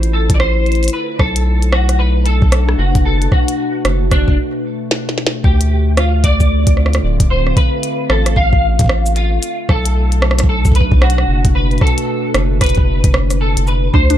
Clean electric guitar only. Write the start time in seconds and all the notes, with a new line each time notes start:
0.13 A4
0.34 D5
0.40 C5
0.93 B4
1.19 A4
1.72 F#4
1.99 B4
2.26 A4
2.79 F#4
3.05 A4
3.32 F#4
4.11 D4
5.44 G4
5.97 F4
6.24 D5
7.30 C5
7.57 B4
8.10 A4
8.36 F5
9.16 F4
9.69 A4
10.49 A4
10.75 B4
11.02 F#4
11.55 B4
11.82 A4
12.61 B4
13.41 A4
13.68 B4
13.94 C5